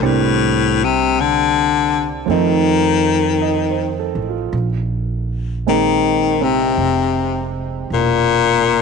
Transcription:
0.00 2.22 C2 medium
0.00 0.07 G#2 soft
0.00 2.27 G3 soft
0.00 2.28 C4 medium
0.00 2.27 D4 soft
0.00 2.27 A#4 soft
0.05 0.85 A2 medium
0.84 1.22 C3 medium
1.20 2.12 D3 medium
2.26 4.12 F2 medium
2.26 4.52 F3 medium
2.26 4.53 A3 medium
2.26 4.54 C4 soft
2.31 4.13 D#3 medium
2.31 4.54 D#4 medium
3.42 3.93 D#5 soft
3.70 4.17 C5 soft
3.99 4.33 A4 soft
4.15 4.50 A1 medium
4.29 4.66 F4 soft
4.53 6.74 A#1 medium
5.67 6.44 D#3 medium
5.67 8.82 G#3 soft
5.67 8.82 A#3 soft
5.67 6.39 C4 soft
5.67 8.82 D#4 medium
6.41 7.54 C3 medium
6.41 8.82 C4 soft
6.77 7.86 F1 medium
7.90 8.82 E1 medium
7.90 8.82 A#2 medium

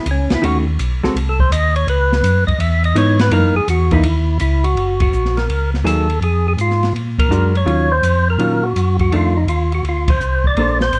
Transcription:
0.06 0.28 C#2 loud
0.06 hi-hat pedal medium
0.06 ride medium
0.11 0.32 C#4 medium
0.30 0.37 C#2 soft
0.30 snare medium
0.30 ride medium
0.34 0.45 E4 loud
0.42 0.78 D#2 medium
0.42 0.64 D#3 medium
0.42 0.64 A3 medium
0.42 0.64 C#4 medium
0.42 0.64 F#4 medium
0.42 0.58 F#4 loud
0.42 ride medium
0.79 1.01 B1 loud
0.79 hi-hat pedal medium
0.79 ride medium
1.03 1.09 B1 soft
1.03 1.14 G#3 medium
1.03 1.14 C4 medium
1.03 1.15 F#4 medium
1.03 1.15 A4 medium
1.03 snare soft
1.15 1.50 C2 medium
1.15 ride medium
1.29 1.40 A4 medium
1.39 1.51 C5 medium
1.39 kick medium
1.51 1.86 D#2 medium
1.51 1.75 D#5 loud
1.51 hi-hat pedal medium
1.51 ride medium
1.76 1.88 C#5 loud
1.76 ride medium
1.87 2.22 C#2 medium
1.87 2.44 B4 medium
1.87 ride medium
2.12 snare soft
2.23 2.45 F#2 loud
2.23 hi-hat pedal medium
2.23 ride medium
2.47 2.53 F#2 soft
2.47 2.59 D#5 medium
2.47 kick medium
2.47 ride medium
2.58 2.94 E2 medium
2.58 2.83 E5 loud
2.58 ride medium
2.84 2.96 D#5 medium
2.84 ride medium
2.95 3.30 G#2 loud
2.95 3.17 E3 medium
2.95 3.17 B3 medium
2.95 3.17 D#4 medium
2.95 3.20 C#5 loud
2.95 hi-hat pedal medium
2.95 ride medium
3.19 3.32 B4 medium
3.19 snare medium
3.19 ride medium
3.31 3.53 F#2 medium
3.31 3.53 E3 medium
3.31 3.53 A#3 medium
3.31 3.54 D#4 medium
3.31 3.56 A#4 medium
3.31 ride medium
3.54 3.61 F#2 soft
3.54 3.68 G#4 loud
3.68 4.03 E2 loud
3.68 3.92 F#4 medium
3.68 hi-hat pedal medium
3.68 ride medium
3.91 4.03 E3 medium
3.91 4.03 A#3 medium
3.91 4.04 D#4 medium
3.91 4.38 E4 medium
3.91 kick medium
3.91 ride medium
4.03 4.39 D#2 loud
4.03 ride medium
4.40 4.76 C#2 loud
4.40 4.65 E4 medium
4.40 hi-hat pedal medium
4.40 ride medium
4.64 5.00 F#4 loud
4.64 ride medium
4.75 5.11 F#1 medium
4.75 ride medium
5.00 5.38 F#4 medium
5.00 kick medium
5.00 ride medium
5.13 5.48 A#1 medium
5.13 hi-hat pedal soft
5.25 snare soft
5.37 5.70 A#4 medium
5.37 snare soft
5.37 ride soft
5.48 5.84 C#2 medium
5.48 ride medium
5.74 snare soft
5.84 6.20 D#2 medium
5.84 6.06 F#3 medium
5.84 6.06 A#3 soft
5.84 6.06 D#4 medium
5.84 6.07 G#4 medium
5.84 6.20 A4 medium
5.84 hi-hat pedal medium
5.84 ride medium
6.10 ride soft
6.21 6.56 F2 medium
6.21 6.47 G#4 medium
6.21 ride medium
6.48 6.53 G#4 medium
6.57 6.93 G#2 medium
6.57 6.93 F4 medium
6.57 hi-hat pedal medium
6.57 ride medium
6.71 snare soft
6.83 snare soft
6.83 ride soft
6.93 7.29 A#2 medium
6.93 ride medium
7.19 7.56 A#4 loud
7.19 kick medium
7.19 ride medium
7.29 7.65 F#2 medium
7.29 7.52 G#3 medium
7.29 7.52 D4 medium
7.29 7.52 F#4 medium
7.29 hi-hat pedal medium
7.55 7.93 C#5 medium
7.55 ride soft
7.65 8.01 D#2 medium
7.65 7.88 D#3 medium
7.65 7.88 F#3 medium
7.65 7.88 C#4 medium
7.65 7.88 F4 medium
7.65 ride medium
7.92 8.28 C5 loud
8.02 8.37 F2 medium
8.02 hi-hat pedal medium
8.02 ride medium
8.30 8.65 A#4 medium
8.38 8.73 A#2 medium
8.38 8.60 D#3 medium
8.38 8.61 F#3 medium
8.38 8.61 C#4 medium
8.38 8.61 F4 medium
8.38 ride medium
8.63 8.97 F#4 medium
8.75 9.10 F#2 medium
8.75 hi-hat pedal medium
8.75 ride medium
8.99 9.12 F#4 medium
8.99 kick medium
8.99 ride soft
9.11 9.46 F2 medium
9.11 9.33 D#3 medium
9.11 9.33 A3 medium
9.11 9.34 D4 medium
9.11 ride medium
9.16 9.38 F4 medium
9.37 9.48 D#4 medium
9.46 9.82 D#2 medium
9.46 9.73 F4 medium
9.46 hi-hat pedal medium
9.46 ride medium
9.72 9.85 F#4 medium
9.72 ride soft
9.83 10.18 D2 medium
9.83 ride medium
9.89 10.11 F4 medium
10.08 10.46 C5 medium
10.08 kick medium
10.08 ride medium
10.20 10.55 C2 medium
10.20 hi-hat pedal medium
10.44 10.79 D5 loud
10.44 kick medium
10.56 10.91 A#1 medium
10.56 10.78 A#3 medium
10.56 10.79 D4 medium
10.56 10.79 A4 medium
10.56 10.79 C5 medium
10.56 ride medium
10.81 10.99 C5 loud
10.81 snare medium
10.92 10.99 A1 medium
10.92 hi-hat pedal medium
10.92 ride medium

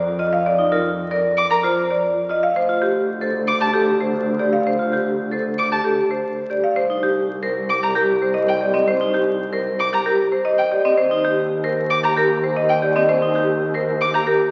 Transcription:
0.00 2.42 F2 medium
0.19 0.36 F4 medium
0.19 0.36 D#5 medium
0.33 0.50 F5 medium
0.46 0.63 D5 medium
0.59 0.76 D#4 medium
0.72 0.89 F4 medium
0.72 0.89 A#4 medium
1.11 1.28 A#4 medium
1.11 1.28 D5 medium
1.37 1.47 D6 medium
1.50 1.68 A#4 medium
1.50 1.60 A#5 medium
1.63 1.81 F4 medium
1.63 1.81 C5 medium
1.90 2.07 D5 medium
2.29 2.47 F4 medium
2.29 2.47 D#5 medium
2.43 2.60 F5 medium
2.56 6.62 D2 medium
2.56 2.73 C5 medium
2.69 2.86 F4 medium
2.82 2.99 G4 medium
3.21 3.39 A4 medium
3.21 3.39 C5 medium
3.47 3.58 D6 medium
3.61 3.78 G4 medium
3.61 3.71 A5 medium
3.74 3.91 G4 medium
3.74 3.91 A4 medium
4.00 4.18 C5 medium
4.39 4.57 G4 medium
4.39 4.57 D5 medium
4.53 4.70 F5 medium
4.67 4.84 C5 medium
4.79 4.97 F4 medium
4.92 5.10 G4 medium
5.31 5.49 A4 medium
5.31 5.50 C5 medium
5.58 5.68 D6 medium
5.72 5.89 G4 medium
5.72 5.82 A5 medium
5.84 6.02 G4 medium
5.84 6.02 A4 medium
6.11 6.28 C5 medium
6.50 6.68 G4 soft
6.50 6.68 D5 medium
6.64 6.81 F5 medium
6.76 10.83 C2 medium
6.76 6.94 C5 medium
6.90 7.07 D#4 medium
7.03 7.20 G4 medium
7.43 7.60 A#4 medium
7.43 7.60 C5 medium
7.69 7.79 D6 medium
7.83 8.00 G4 medium
7.83 7.92 A#5 medium
7.95 8.13 G4 medium
7.95 8.13 A#4 medium
8.22 8.39 C5 medium
8.34 8.52 D#5 medium
8.48 8.58 G5 medium
8.61 8.78 G4 medium
8.61 8.78 D5 medium
8.74 8.91 C4 medium
8.74 8.92 D#5 medium
8.88 9.05 C5 medium
9.01 9.18 D#4 medium
9.14 9.31 G4 medium
9.53 9.70 A#4 medium
9.53 9.70 C5 medium
9.79 9.89 D6 medium
9.93 10.10 G4 medium
9.93 10.03 A#5 medium
10.06 10.23 G4 medium
10.06 10.23 A#4 medium
10.32 10.49 C5 medium
10.45 10.62 D#5 medium
10.58 10.68 G5 medium
10.71 10.89 G4 medium
10.71 10.89 D5 medium
10.85 11.02 C4 medium
10.85 11.02 D#5 medium
10.97 14.51 D#2 medium
10.97 11.15 C5 medium
11.11 11.28 D#4 medium
11.24 11.42 G4 medium
11.64 11.81 A#4 medium
11.64 11.81 C5 medium
11.90 12.00 D6 medium
12.04 12.21 G4 medium
12.04 12.13 A#5 medium
12.16 12.34 G4 medium
12.16 12.34 A#4 medium
12.44 12.60 C5 medium
12.56 12.73 D#5 medium
12.69 12.79 G5 medium
12.82 12.99 G4 medium
12.82 12.99 D5 medium
12.96 13.13 C4 medium
12.96 13.13 D#5 medium
13.09 13.26 C5 medium
13.22 13.39 D#4 medium
13.35 13.52 G4 medium
13.74 13.92 A#4 medium
13.74 13.92 C5 medium
14.01 14.11 D6 medium
14.14 14.31 G4 medium
14.14 14.24 A#5 medium
14.27 14.44 G4 medium
14.27 14.44 A#4 medium

